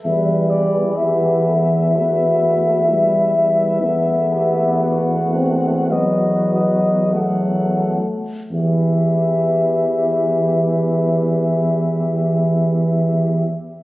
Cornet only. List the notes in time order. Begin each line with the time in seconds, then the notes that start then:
0.05 E5
0.50 D5
0.96 E5
4.82 F#5
5.91 D#5
6.53 D#5
7.15 F#5
8.52 E5